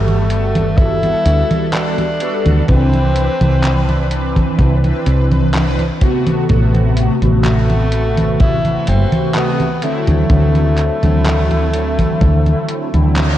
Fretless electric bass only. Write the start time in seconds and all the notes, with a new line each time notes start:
Already playing: G1
1.25 D2
2.46 D2
2.69 C2
3.41 C2
4.59 C2
5.06 C2
6.50 A1
7.22 A1
8.88 F#1
10.08 D2
10.30 D2
11.04 D2
12.21 D2
12.94 D2